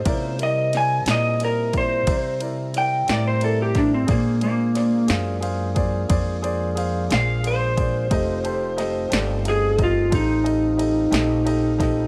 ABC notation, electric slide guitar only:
X:1
M:12/8
L:1/16
Q:3/8=60
K:Fmix
V:1 name="Electric slide guitar"
c2 e2 _a2 e2 B2 c4 z2 g2 d c =A G D C | B,2 B,4 z12 f2 c4- | c8 _A2 F2 E12 |]